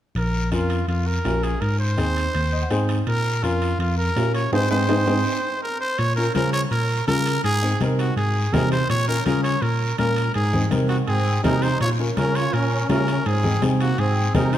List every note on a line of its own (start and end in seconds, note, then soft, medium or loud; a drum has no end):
0.15 0.52 A#1 medium
0.15 0.50 A#4 medium
0.15 high timbale medium
0.15 long guiro medium
0.51 0.81 F2 medium
0.51 0.77 C#4 medium
0.51 0.77 F4 medium
0.51 0.86 F4 medium
0.51 0.77 A#4 medium
0.51 high timbale medium
0.51 short guiro medium
0.70 high timbale medium
0.70 short guiro medium
0.88 1.17 F2 medium
0.88 1.08 F4 medium
0.88 high timbale medium
0.88 long guiro medium
1.06 1.45 A#4 medium
1.25 1.54 A#1 medium
1.25 1.50 C#4 medium
1.25 1.50 F4 medium
1.25 1.51 A#4 medium
1.25 high timbale medium
1.25 low timbale medium
1.25 short guiro medium
1.43 1.62 G#4 medium
1.43 high timbale medium
1.43 short guiro medium
1.61 1.98 G#2 medium
1.61 1.79 A#4 medium
1.61 high timbale medium
1.61 long guiro medium
1.80 2.85 C5 loud
1.97 2.27 D#2 medium
1.97 2.23 C4 medium
1.97 2.23 D#4 medium
1.97 2.24 G#4 medium
1.97 high timbale medium
1.97 short guiro medium
2.16 high timbale medium
2.16 short guiro medium
2.34 2.64 D#2 medium
2.34 high timbale medium
2.34 long guiro medium
2.53 2.61 D#5 medium
2.62 2.70 F#5 medium
2.70 3.00 G#2 medium
2.70 2.96 C4 medium
2.70 2.96 D#4 medium
2.70 2.96 G#4 medium
2.70 3.05 G#5 medium
2.70 high timbale medium
2.70 short guiro medium
2.89 high timbale medium
2.89 short guiro medium
3.07 3.44 A#2 medium
3.07 3.45 A#4 medium
3.07 high timbale medium
3.07 long guiro medium
3.43 3.73 F2 medium
3.43 3.69 C#4 medium
3.43 3.80 F4 medium
3.43 3.69 F4 medium
3.43 3.69 A#4 medium
3.43 high timbale medium
3.43 short guiro medium
3.62 high timbale medium
3.62 short guiro medium
3.79 4.09 F2 medium
3.79 3.97 F4 medium
3.79 high timbale medium
3.79 long guiro medium
3.98 4.32 A#4 medium
4.16 4.45 A#2 medium
4.16 4.42 C#4 medium
4.16 4.42 F4 medium
4.16 4.42 A#4 medium
4.16 high timbale medium
4.16 low timbale medium
4.16 short guiro medium
4.35 4.52 C#5 medium
4.35 high timbale medium
4.35 short guiro medium
4.53 4.66 G#2 medium
4.53 4.64 C4 medium
4.53 4.65 D#4 medium
4.53 4.65 G#4 medium
4.53 4.70 C5 loud
4.53 high timbale medium
4.53 long guiro loud
4.71 4.85 G#2 medium
4.71 4.83 C4 medium
4.71 4.83 D#4 medium
4.71 4.83 G#4 medium
4.71 5.58 C5 medium
4.71 high timbale medium
4.71 long guiro medium
4.89 5.03 G#2 medium
4.89 5.01 C4 loud
4.89 5.01 D#4 loud
4.89 5.01 G#4 medium
4.89 high timbale medium
4.89 long guiro medium
5.07 5.21 G#2 medium
5.07 5.19 C4 medium
5.07 5.19 D#4 medium
5.07 5.19 G#4 medium
5.07 high timbale medium
5.07 long guiro medium
5.62 5.79 A#4 medium
5.81 6.00 C5 medium
5.98 6.28 A#2 medium
5.98 6.15 C#5 loud
5.98 high conga soft
5.98 high timbale medium
5.98 long guiro medium
6.16 6.23 C#4 medium
6.16 6.24 F4 medium
6.16 6.33 A#4 medium
6.16 6.24 A#4 medium
6.34 6.64 C#3 medium
6.34 6.61 C#4 medium
6.34 6.61 F4 medium
6.34 6.52 A#4 medium
6.34 6.61 C5 medium
6.34 high conga medium
6.34 high timbale medium
6.34 short guiro medium
6.53 6.61 C#5 loud
6.53 high timbale medium
6.53 short guiro medium
6.71 7.01 A#2 medium
6.71 7.05 A#4 medium
6.71 high conga soft
6.71 high timbale medium
6.71 long guiro medium
7.08 7.37 C#3 medium
7.08 7.27 C#4 medium
7.08 7.27 F4 medium
7.08 7.42 A#4 loud
7.08 7.27 A#4 medium
7.08 high conga medium
7.08 high timbale medium
7.08 short guiro medium
7.26 high timbale medium
7.26 short guiro medium
7.44 7.73 G#2 medium
7.44 7.78 G#4 loud
7.44 high conga soft
7.44 high timbale medium
7.44 long guiro medium
7.63 7.69 C4 medium
7.63 7.69 D#4 medium
7.63 7.69 G#4 medium
7.81 8.10 C3 medium
7.81 8.06 C4 medium
7.81 8.06 D#4 medium
7.81 8.07 A#4 medium
7.81 high conga medium
7.81 high timbale medium
7.81 short guiro medium
7.99 8.16 F#4 medium
7.99 high timbale medium
7.99 short guiro medium
8.17 8.46 G#2 medium
8.17 8.55 G#4 medium
8.17 high conga soft
8.17 high timbale medium
8.17 long guiro medium
8.53 8.82 C3 medium
8.53 8.73 C4 medium
8.53 8.73 D#4 medium
8.53 8.73 G#4 medium
8.53 8.71 A#4 medium
8.53 high conga medium
8.53 low conga medium
8.53 high timbale medium
8.53 low timbale medium
8.53 short guiro medium
8.72 8.89 C5 medium
8.72 high timbale medium
8.72 short guiro medium
8.90 9.19 A#2 medium
8.90 9.07 C#5 loud
8.90 high conga soft
8.90 high timbale medium
8.90 long guiro medium
9.08 9.14 C#4 medium
9.08 9.15 F4 medium
9.08 9.25 A#4 loud
9.08 9.15 A#4 medium
9.26 9.55 C#3 medium
9.26 9.52 C#4 medium
9.26 9.52 F4 medium
9.26 9.52 G#4 medium
9.26 9.43 A#4 medium
9.26 high conga medium
9.26 high timbale medium
9.26 short guiro medium
9.43 9.63 C#5 loud
9.43 high timbale medium
9.43 short guiro medium
9.62 9.91 A#2 medium
9.62 9.98 A#4 medium
9.62 high conga soft
9.62 high timbale medium
9.62 long guiro medium
9.98 10.28 A#2 medium
9.98 10.18 C#4 medium
9.98 10.18 F4 medium
9.98 10.32 A#4 medium
9.98 10.18 A#4 medium
9.98 high conga medium
9.98 high timbale medium
9.98 short guiro medium
10.16 high timbale medium
10.16 short guiro medium
10.34 10.64 G#2 medium
10.34 10.69 G#4 medium
10.34 high conga soft
10.34 high timbale medium
10.34 long guiro medium
10.53 10.60 C4 medium
10.53 10.60 D#4 medium
10.53 10.60 G#4 medium
10.53 low conga medium
10.71 11.01 C3 medium
10.71 10.97 C4 medium
10.71 10.97 D#4 medium
10.71 10.97 A#4 medium
10.71 high conga medium
10.71 high timbale medium
10.71 short guiro medium
10.89 10.97 F#4 medium
10.89 high timbale medium
10.89 short guiro medium
11.07 11.37 G#2 medium
11.07 11.41 C4 medium
11.07 11.42 G#4 medium
11.07 high conga soft
11.07 high timbale medium
11.07 long guiro medium
11.44 11.73 C3 medium
11.44 11.63 C4 medium
11.44 11.61 D#4 medium
11.44 11.63 D#4 medium
11.44 11.63 G#4 medium
11.44 11.64 A#4 medium
11.44 high conga medium
11.44 low conga medium
11.44 high timbale medium
11.44 low timbale medium
11.44 short guiro medium
11.62 11.80 D#4 medium
11.62 11.81 C5 medium
11.62 high timbale medium
11.62 short guiro medium
11.81 12.10 A#2 medium
11.81 11.89 F4 medium
11.81 11.89 C#5 medium
11.81 high conga soft
11.81 high timbale medium
11.81 long guiro medium
11.99 12.05 C#4 medium
11.99 12.05 F4 medium
11.99 12.06 A#4 medium
12.17 12.46 C#3 medium
12.17 12.42 C#4 medium
12.17 12.34 C#4 medium
12.17 12.43 F4 medium
12.17 12.37 A#4 medium
12.17 12.43 A#4 medium
12.17 high conga medium
12.17 high timbale medium
12.17 short guiro medium
12.35 12.53 F4 medium
12.35 12.55 C#5 medium
12.35 high timbale medium
12.35 short guiro medium
12.53 12.83 A#2 medium
12.53 12.88 C#4 medium
12.53 12.89 A#4 medium
12.53 high conga soft
12.53 high timbale medium
12.53 long guiro medium
12.89 13.19 C#3 medium
12.89 13.08 C#4 medium
12.89 13.23 C#4 medium
12.89 13.09 F4 medium
12.89 13.28 A#4 medium
12.89 13.09 A#4 medium
12.89 high conga medium
12.89 high timbale medium
12.89 low timbale medium
12.89 short guiro medium
13.08 high timbale medium
13.08 short guiro medium
13.26 13.55 G#2 medium
13.26 13.62 C4 medium
13.26 13.63 G#4 medium
13.26 high conga soft
13.26 high timbale medium
13.26 long guiro medium
13.44 13.50 C4 medium
13.44 13.50 D#4 medium
13.44 13.51 G#4 medium
13.44 low conga medium
13.62 13.91 C3 medium
13.62 13.88 C4 medium
13.62 13.88 D#4 medium
13.62 13.88 G#4 medium
13.62 high conga medium
13.62 high timbale medium
13.62 short guiro medium
13.80 13.97 A#3 medium
13.80 14.01 F#4 medium
13.80 high timbale medium
13.80 short guiro medium
13.98 14.27 G#2 medium
13.98 14.35 C4 medium
13.98 14.35 G#4 medium
13.98 high conga soft
13.98 high timbale medium
13.98 long guiro medium
14.35 14.58 C3 medium
14.35 14.54 C4 medium
14.35 14.54 D#4 medium
14.35 14.51 D#4 medium
14.35 14.54 G#4 medium
14.35 14.55 A#4 medium
14.35 high conga medium
14.35 low conga medium
14.35 high timbale medium
14.35 low timbale medium
14.35 short guiro medium
14.53 14.58 D#4 medium
14.53 14.58 C5 medium
14.53 high timbale medium
14.53 short guiro medium